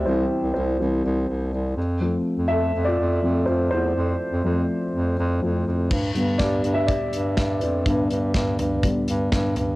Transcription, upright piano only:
X:1
M:4/4
L:1/16
Q:1/4=123
K:Gmix
V:1 name="Upright piano"
[Ec]4 [Ec]8 z4 | z4 [Ae]3 [Fd]4- [Fd] [Fc]2 [Ec]2- | [Ec]8- [Ec]2 z6 | z4 [Gd]3 [Ge] [Gd]6 [DB]2- |
[DB]2 z12 z2 |]
V:2 name="Upright piano" clef=bass
[E,G,C]6 [E,G,C]2 z8 | [F,A,C]6 z4 [F,A,C]2 z4 | z4 [F,A,C]6 z2 [F,A,C]2 z2 | z2 [D,G,B,]2 z12 |
[D,G,B,]6 z2 [D,G,B,]2 z6 |]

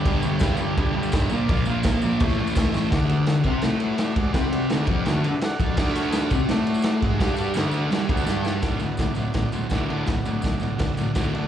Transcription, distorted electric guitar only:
X:1
M:4/4
L:1/8
Q:1/4=168
K:D
V:1 name="Distorted electric guitar" clef=bass
[G,,D,G,] [G,,D,G,] [G,,D,G,] [G,,D,G,] [G,,D,G,] [G,,D,G,] [G,,D,G,] [_B,,=F,_B,] | [_B,,=F,_B,] [B,,F,B,] [B,,F,B,] [B,,F,B,] [A,,E,A,] [A,,E,A,] [A,,E,A,] [A,,E,A,] | [D,,D,]3 [=C,=C] [A,,A,]3 [^G,,^G,] | [=C,=C]2 [D,,D,] [=F,,=F,] [D,,D,] z2 [F,,F,] |
[D,,D,]3 [=C,=C] [A,,A,]3 [^G,,^G,] | [G,,G,]2 [D,,D,]2 [G,,G,] [D,,D,] [G,,G,]2 | [D,,A,,D,] [D,,A,,] [D,,A,,] [D,,A,,] [D,,A,,] [D,,A,,] [D,,A,,D,] [D,,A,,D,] | [D,,A,,] [D,,A,,] [D,,A,,] [D,,A,,] [D,,A,,] [D,,A,,] [D,,A,,D,] [D,,A,,D,] |]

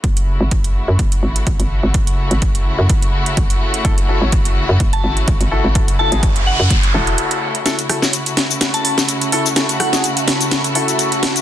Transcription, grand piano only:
X:1
M:4/4
L:1/16
Q:"Swing 16ths" 1/4=126
K:F#m
V:1 name="Grand piano"
z16 | z16 | [EFA] z [EFA] [EFc] z8 z2 [EFA] z | [EFA] z [EFA] [EFG] z6 [EFA]6 |
[EFA] z [EFA] [EFc] z8 z2 [EFA] z | [EFA] z [EFA] [EFG] z6 [EFA]6 |]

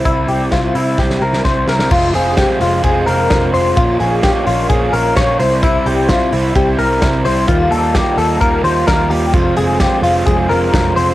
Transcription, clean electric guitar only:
X:1
M:4/4
L:1/8
Q:1/4=129
K:Fm
V:1 name="Clean electric guitar"
=E G F E G B c B | F A G F A B2 c | F A G F A B d c | =E G F E G B2 c |
F =A G A B c B G | F A G F A B2 c |]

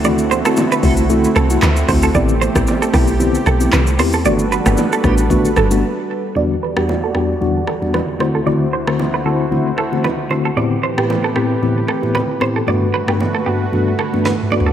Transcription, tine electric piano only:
X:1
M:4/4
L:1/16
Q:"Swing 16ths" 1/4=114
K:Dmix
V:1 name="Tine electric piano"
[A,CEF] z2 [A,CEF] z2 [A,CEF] z [A,CEF] z2 [A,CEF] z2 [A,CEF] z | [B,CEG] z2 [B,CEG] z2 [B,CEG] z [B,CEG] z2 [B,CEG] z2 [B,CEG] z | [A,B,DF] z2 [A,B,DF] z2 [A,B,DF] z [A,B,DF] z2 [A,B,DF] z4 | [E,,G,B,DF] z2 [E,,G,B,DF] z2 [E,,G,B,DF] z [E,,G,B,DF] z2 [E,,G,B,DF] z2 [D,A,CEF] z |
[D,A,CEF] z2 [D,A,CEF] z2 [D,A,CEF] z [D,A,CEF] z2 [D,A,CEF] z2 [D,A,CEF] z | [A,,B,CEG] z2 [A,,B,CEG] z2 [A,,B,CEG] z [A,,B,CEG] z2 [A,,B,CEG] z2 [A,,B,CEG] z | [G,,A,B,DF] z2 [G,,A,B,DF] z2 [G,,A,B,DF] z [G,,A,B,DF] z2 [G,,A,B,DF] z2 [G,,A,B,DF] z |]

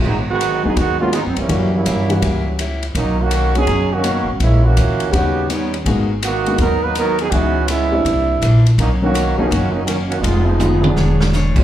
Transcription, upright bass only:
X:1
M:4/4
L:1/8
Q:"Swing" 1/4=165
K:Abdor
V:1 name="Upright bass" clef=bass
A,,,3 E,, E,,2- (3E,, G,, F,, | G,,2 =G,,2 D,,4 | =B,,,4 ^F,,,3 A,,, | B,,,2 =D,,2 E,,4 |
A,,,4 E,,4 | D,,4 =C,,2 B,,,2 | =B,,,3 =C,, ^F,,,4 | F,,,4 =E,,,4 |]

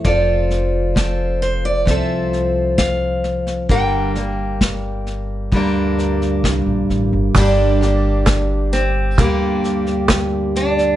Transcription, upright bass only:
X:1
M:4/4
L:1/16
Q:1/4=66
K:Gm
V:1 name="Upright bass" clef=bass
F,,,8 C,,8 | G,,,8 D,,4 C,, B,,, A,,, G,,, | G,,,8 D,,8 |]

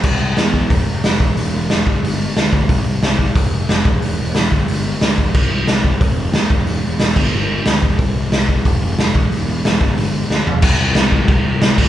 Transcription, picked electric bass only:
X:1
M:4/4
L:1/8
Q:1/4=181
K:Clyd
V:1 name="Picked electric bass" clef=bass
C,, C,, E,,2 =F,,, F,,, F,,, E,,, | E,,, E,,, E,,, G,,, G,,,2 D,, D,, | C,, C,, C,,2 =F,,, F,,, F,,, E,,, | E,,, E,,, E,,, G,,, G,,,2 D,, E,,, |
C,, C,, C,,2 =F,,, F,,, _E,, =E,,, | E,,, E,,, E,,, G,,, G,,,2 D,, E,,, | C,, C,, C,,2 =F,,, F,,, F,,, E,,, | E,,, E,,, E,,, G,,, G,,,2 D,, E,,, |
C,, C,, C,, C,, C,, C,, C,, G,,, |]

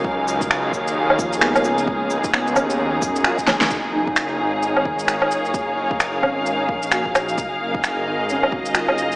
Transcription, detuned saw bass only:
X:1
M:4/4
L:1/8
Q:"Swing 16ths" 1/4=131
K:Gb
V:1 name="Detuned saw bass" clef=bass
D,,3 E,,4 D,, | D,,3 E,,2 G,,2 D,, | G,,,3 A,,,4 G,,, | G,,,3 A,,,2 B,,,3 |
G,,,3 A,,,4 G,,, |]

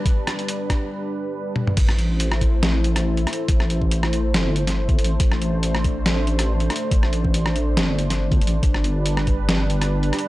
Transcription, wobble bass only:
X:1
M:4/4
L:1/8
Q:"Swing 16ths" 1/4=140
K:Am
V:1 name="Wobble bass" clef=bass
z8 | A,,,6- A,,, z | A,,,4 G,,,3 A,,, | A,,,6- A,,, z |
A,,,4 G,,,3 A,,, | G,,,6- G,,, z |]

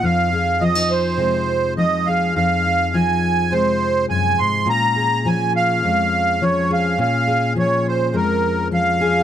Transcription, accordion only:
X:1
M:4/4
L:1/8
Q:1/4=104
K:Bbm
V:1 name="Accordion"
f2 e c3 e f | f2 a2 c2 a c' | b2 a f3 d f | f2 d c B2 f2 |]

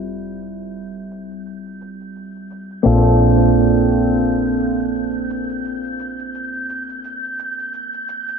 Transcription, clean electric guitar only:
X:1
M:4/4
L:1/8
Q:"Swing 16ths" 1/4=86
K:Bblyd
V:1 name="Clean electric guitar"
[G,CEFA]8 | [B,CDFA]8- | [B,CDFA]8 |]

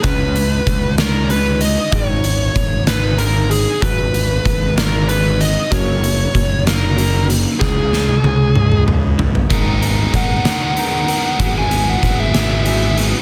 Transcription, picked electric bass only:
X:1
M:6/8
L:1/8
Q:3/8=63
K:G#m
V:1 name="Picked electric bass" clef=bass
C,,2 C,,4 | G,,,2 G,,,4 | G,,,2 G,,,4 | F,,,2 F,,,4 |
C,,2 C,,4 | G,,,2 G,,, z3 | G,,,2 G,,,4 |]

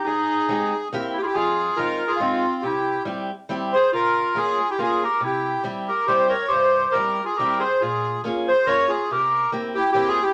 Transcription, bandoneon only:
X:1
M:3/4
L:1/16
Q:"Swing" 1/4=139
K:Ab
V:1 name="Bandoneon"
A8 z2 G/2 A/2 G | [K:Cphr] A4 B3 A F4 | G4 z6 c2 | B4 A3 G A2 B2 |
G4 z2 B2 c2 d2 | c4 B3 A B2 c2 | A4 z2 c2 d2 A2 | B4 z2 G2 (3G2 A2 G2 |]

